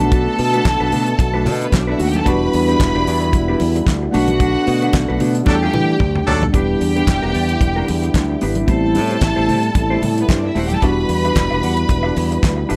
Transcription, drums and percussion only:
0.01 high conga medium
0.12 kick loud
0.12 closed hi-hat soft
0.12 muted conga medium
0.39 open hi-hat medium
0.54 closed hi-hat soft
0.65 kick loud
0.65 snare loud
0.65 clap loud
0.65 closed hi-hat medium
0.65 high conga medium
0.92 open hi-hat medium
0.92 low conga medium
1.06 closed hi-hat soft
1.19 kick loud
1.19 closed hi-hat medium
1.19 muted conga medium
1.46 open hi-hat medium
1.46 muted conga medium
1.46 low conga medium
1.61 closed hi-hat soft
1.72 kick loud
1.72 snare loud
1.72 clap medium
1.72 closed hi-hat medium
1.72 high conga medium
1.99 open hi-hat medium
2.14 closed hi-hat soft
2.14 high conga medium
2.26 kick medium
2.26 closed hi-hat medium
2.26 muted conga medium
2.53 open hi-hat medium
2.69 closed hi-hat soft
2.80 kick loud
2.80 snare loud
2.80 clap medium
2.80 closed hi-hat medium
2.80 high conga medium
3.07 open hi-hat medium
3.07 muted conga soft
3.21 closed hi-hat soft
3.33 kick loud
3.33 closed hi-hat medium
3.33 muted conga medium
3.60 open hi-hat medium
3.60 muted conga medium
3.76 closed hi-hat soft
3.87 kick loud
3.87 snare loud
3.87 clap medium
3.87 closed hi-hat medium
3.87 high conga medium
4.14 open hi-hat medium
4.28 closed hi-hat soft
4.28 high conga medium
4.40 kick loud
4.40 closed hi-hat medium
4.40 muted conga medium
4.67 open hi-hat medium
4.82 closed hi-hat soft
4.93 kick loud
4.93 snare loud
4.93 clap loud
4.93 closed hi-hat medium
4.93 high conga medium
5.20 open hi-hat medium
5.20 muted conga soft
5.20 low conga medium
5.35 closed hi-hat soft
5.46 kick loud
5.46 snare medium
5.46 muted conga medium
5.73 high tom medium
5.73 muted conga medium
5.73 low conga medium
6.00 kick medium
6.00 mid tom medium
6.00 high conga medium
6.16 mid tom medium
6.28 floor tom medium
6.42 floor tom medium
6.42 high conga medium
6.54 kick medium
6.54 closed hi-hat medium
6.54 muted conga medium
6.81 open hi-hat medium
6.97 closed hi-hat soft
7.07 kick medium
7.07 snare loud
7.07 clap medium
7.07 closed hi-hat soft
7.07 high conga medium
7.35 open hi-hat medium
7.49 closed hi-hat soft
7.61 kick loud
7.61 closed hi-hat medium
7.61 muted conga medium
7.88 open hi-hat medium
7.88 muted conga medium
8.03 closed hi-hat soft
8.14 kick loud
8.14 snare loud
8.14 clap medium
8.14 closed hi-hat medium
8.14 high conga medium
8.41 open hi-hat medium
8.55 closed hi-hat medium
8.55 high conga medium
8.68 kick medium
8.68 closed hi-hat soft
8.68 muted conga medium
8.95 open hi-hat medium
9.11 closed hi-hat soft
9.21 kick loud
9.21 snare loud
9.21 clap medium
9.21 closed hi-hat medium
9.21 high conga medium
9.49 open hi-hat medium
9.49 muted conga soft
9.49 low conga medium
9.63 closed hi-hat soft
9.75 kick medium
9.75 closed hi-hat medium
9.75 muted conga medium
10.03 open hi-hat medium
10.03 muted conga medium
10.03 low conga medium
10.18 closed hi-hat soft
10.29 kick loud
10.29 snare loud
10.29 clap medium
10.29 closed hi-hat medium
10.29 high conga medium
10.56 open hi-hat medium
10.70 closed hi-hat medium
10.70 high conga medium
10.82 kick medium
10.82 closed hi-hat medium
10.82 muted conga medium
11.09 open hi-hat medium
11.25 closed hi-hat soft
11.35 kick medium
11.35 snare loud
11.35 clap loud
11.35 closed hi-hat medium
11.35 high conga medium
11.63 open hi-hat medium
11.63 muted conga soft
11.77 closed hi-hat soft
11.89 kick loud
11.89 closed hi-hat medium
11.89 muted conga medium
12.16 open hi-hat medium
12.16 muted conga soft
12.32 closed hi-hat soft
12.43 kick loud
12.43 snare loud
12.43 clap medium
12.43 closed hi-hat medium
12.43 high conga medium
12.70 open hi-hat medium

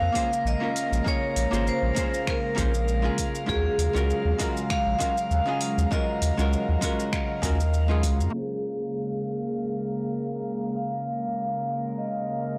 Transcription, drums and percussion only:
0.15 kick medium
0.15 open hi-hat medium
0.15 shaker medium
0.33 shaker soft
0.47 shaker soft
0.76 open hi-hat medium
0.76 shaker medium
0.93 shaker soft
1.06 kick loud
1.06 shaker soft
1.36 open hi-hat medium
1.36 shaker medium
1.53 shaker soft
1.67 shaker soft
1.96 kick loud
1.96 open hi-hat medium
1.96 shaker medium
2.14 shaker soft
2.27 finger snap medium
2.27 kick loud
2.27 shaker soft
2.58 kick medium
2.58 open hi-hat medium
2.58 shaker medium
2.74 shaker soft
2.88 shaker soft
3.18 kick medium
3.18 open hi-hat medium
3.18 shaker medium
3.35 shaker soft
3.49 kick loud
3.49 shaker soft
3.79 open hi-hat medium
3.79 shaker medium
3.96 shaker soft
4.10 shaker soft
4.39 kick medium
4.39 open hi-hat medium
4.39 shaker medium
4.57 shaker soft
4.70 finger snap medium
4.70 kick loud
4.70 shaker soft
5.00 kick medium
5.00 open hi-hat medium
5.00 shaker medium
5.18 shaker soft
5.31 shaker soft
5.61 open hi-hat medium
5.61 shaker medium
5.78 shaker soft
5.92 kick loud
5.92 shaker soft
6.22 open hi-hat medium
6.22 shaker medium
6.39 shaker soft
6.53 shaker soft
6.82 kick medium
6.82 open hi-hat loud
6.82 shaker medium
7.00 shaker soft
7.13 finger snap medium
7.13 kick loud
7.13 shaker soft
7.43 kick loud
7.43 open hi-hat medium
7.43 shaker medium
7.60 shaker soft
7.74 shaker soft
8.03 kick medium
8.03 open hi-hat medium
8.03 shaker medium
8.21 shaker soft

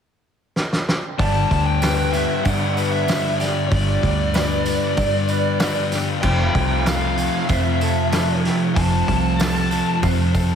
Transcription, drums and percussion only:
0.56 snare medium
0.73 snare medium
0.89 snare medium
1.19 kick loud
1.19 open hi-hat medium
1.51 kick medium
1.51 open hi-hat medium
1.82 snare loud
1.82 open hi-hat medium
1.82 tambourine medium
2.13 open hi-hat medium
2.13 tambourine medium
2.45 kick loud
2.45 open hi-hat medium
2.45 tambourine medium
2.77 open hi-hat medium
2.77 tambourine medium
3.08 snare loud
3.08 open hi-hat medium
3.08 tambourine medium
3.40 snare soft
3.40 open hi-hat medium
3.40 tambourine medium
3.71 kick loud
3.71 open hi-hat medium
4.03 kick medium
4.03 open hi-hat medium
4.34 snare loud
4.34 open hi-hat medium
4.34 tambourine medium
4.66 open hi-hat medium
4.66 tambourine medium
4.97 kick loud
4.97 open hi-hat medium
4.97 tambourine medium
5.28 open hi-hat soft
5.28 tambourine medium
5.60 snare loud
5.60 open hi-hat medium
5.60 tambourine medium
5.92 snare soft
5.92 open hi-hat medium
5.92 tambourine medium
6.23 kick loud
6.23 crash loud
6.55 kick medium
6.55 open hi-hat medium
6.86 snare loud
6.86 open hi-hat medium
6.86 tambourine loud
7.17 open hi-hat medium
7.17 tambourine medium
7.49 kick loud
7.49 open hi-hat medium
7.49 tambourine medium
7.81 open hi-hat medium
7.81 tambourine medium
8.12 snare loud
8.12 open hi-hat medium
8.12 tambourine medium
8.45 snare soft
8.45 open hi-hat medium
8.76 kick loud
8.76 open hi-hat medium
8.76 tambourine soft
9.08 kick medium
9.08 open hi-hat medium
9.40 snare loud
9.40 open hi-hat medium
9.40 tambourine medium
9.71 open hi-hat medium
9.71 tambourine medium
10.03 kick loud
10.03 open hi-hat medium
10.03 tambourine medium
10.35 kick medium
10.35 open hi-hat medium
10.35 tambourine medium

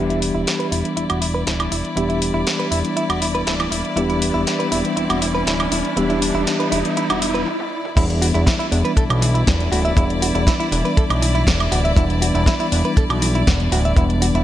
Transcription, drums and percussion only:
0.10 closed hi-hat soft
0.22 open hi-hat loud
0.47 snare loud
0.47 closed hi-hat medium
0.60 closed hi-hat soft
0.72 open hi-hat medium
0.85 closed hi-hat soft
0.97 closed hi-hat medium
1.10 closed hi-hat medium
1.10 high woodblock medium
1.22 open hi-hat loud
1.47 snare loud
1.47 closed hi-hat medium
1.60 closed hi-hat soft
1.60 high woodblock medium
1.72 open hi-hat medium
1.85 closed hi-hat soft
1.97 closed hi-hat medium
2.10 closed hi-hat soft
2.22 open hi-hat loud
2.47 snare loud
2.47 closed hi-hat medium
2.60 closed hi-hat soft
2.72 open hi-hat medium
2.85 closed hi-hat medium
2.97 closed hi-hat medium
3.10 closed hi-hat medium
3.10 high woodblock medium
3.22 open hi-hat loud
3.35 closed hi-hat soft
3.47 snare loud
3.47 closed hi-hat medium
3.60 closed hi-hat soft
3.60 high woodblock medium
3.72 open hi-hat medium
3.85 closed hi-hat soft
3.97 closed hi-hat medium
4.10 closed hi-hat soft
4.22 open hi-hat loud
4.47 snare loud
4.47 closed hi-hat medium
4.60 closed hi-hat soft
4.72 open hi-hat medium
4.85 closed hi-hat soft
4.97 closed hi-hat medium
5.10 closed hi-hat soft
5.10 high woodblock medium
5.22 open hi-hat loud
5.47 snare loud
5.47 closed hi-hat medium
5.60 closed hi-hat soft
5.60 high woodblock medium
5.72 open hi-hat medium
5.85 closed hi-hat soft
5.97 closed hi-hat medium
6.10 closed hi-hat soft
6.22 open hi-hat loud
6.47 snare loud
6.47 closed hi-hat medium
6.60 closed hi-hat soft
6.72 open hi-hat loud
6.85 closed hi-hat soft
6.97 closed hi-hat medium
7.10 closed hi-hat medium
7.10 high woodblock medium
7.22 open hi-hat loud
7.35 closed hi-hat soft
7.47 high tom medium
7.60 high tom medium
7.85 mid tom medium
7.97 kick loud
7.97 closed hi-hat medium
7.97 crash loud
8.10 closed hi-hat soft
8.22 open hi-hat loud
8.35 closed hi-hat soft
8.47 kick loud
8.47 snare loud
8.47 closed hi-hat medium
8.60 closed hi-hat soft
8.72 open hi-hat medium
8.85 closed hi-hat soft
8.97 kick loud
8.97 closed hi-hat medium
9.10 closed hi-hat soft
9.10 high woodblock medium
9.22 open hi-hat loud
9.35 closed hi-hat soft
9.47 kick loud
9.47 snare loud
9.47 closed hi-hat medium
9.60 closed hi-hat soft
9.72 open hi-hat medium
9.85 closed hi-hat soft
9.97 kick loud
9.97 closed hi-hat medium
10.10 closed hi-hat soft
10.22 open hi-hat loud
10.35 closed hi-hat soft
10.47 kick loud
10.47 snare loud
10.47 closed hi-hat medium
10.60 closed hi-hat soft
10.72 open hi-hat loud
10.85 closed hi-hat soft
10.97 kick loud
10.97 closed hi-hat medium
11.10 closed hi-hat soft
11.10 high woodblock medium
11.22 open hi-hat loud
11.35 closed hi-hat soft
11.47 kick loud
11.47 snare loud
11.47 closed hi-hat medium
11.60 closed hi-hat soft
11.60 high woodblock medium
11.72 open hi-hat loud
11.85 closed hi-hat soft
11.97 kick loud
11.97 closed hi-hat medium
12.10 closed hi-hat soft
12.22 open hi-hat loud
12.35 closed hi-hat soft
12.46 kick loud
12.46 snare loud
12.46 closed hi-hat medium
12.60 closed hi-hat soft
12.72 open hi-hat loud
12.85 closed hi-hat soft
12.97 kick loud
12.97 closed hi-hat medium
13.10 closed hi-hat soft
13.10 high woodblock medium
13.22 open hi-hat loud
13.35 closed hi-hat soft
13.47 kick loud
13.47 snare loud
13.47 closed hi-hat medium
13.60 closed hi-hat soft
13.72 open hi-hat loud
13.85 closed hi-hat soft
13.97 kick loud
13.97 closed hi-hat medium
14.10 closed hi-hat soft
14.22 open hi-hat loud
14.35 closed hi-hat soft

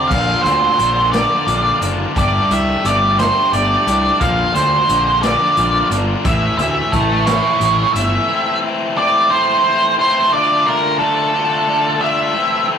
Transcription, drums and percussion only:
0.11 kick loud
0.11 crash medium
0.45 closed hi-hat medium
0.79 closed hi-hat medium
1.14 snare loud
1.14 closed hi-hat medium
1.48 closed hi-hat medium
1.82 closed hi-hat medium
2.16 kick loud
2.16 closed hi-hat medium
2.51 closed hi-hat medium
2.85 closed hi-hat medium
3.19 snare loud
3.19 closed hi-hat medium
3.53 closed hi-hat medium
3.87 closed hi-hat medium
4.21 kick loud
4.21 closed hi-hat medium
4.55 closed hi-hat medium
4.89 closed hi-hat medium
5.23 snare loud
5.23 closed hi-hat medium
5.57 closed hi-hat medium
5.91 closed hi-hat medium
6.25 kick loud
6.25 closed hi-hat medium
6.59 closed hi-hat medium
6.93 kick medium
6.93 closed hi-hat medium
7.27 snare loud
7.27 closed hi-hat medium
7.61 closed hi-hat medium
7.96 closed hi-hat medium

